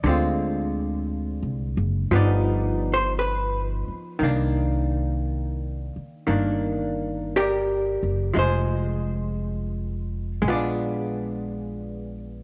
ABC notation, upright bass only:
X:1
M:4/4
L:1/8
Q:"Swing" 1/4=58
K:Cm
V:1 name="Upright bass" clef=bass
D,,2- (3D,, C,, ^F,,, G,,,3 z | C,,3 z G,,,3 ^F,,, | F,,,4 B,,,4 |]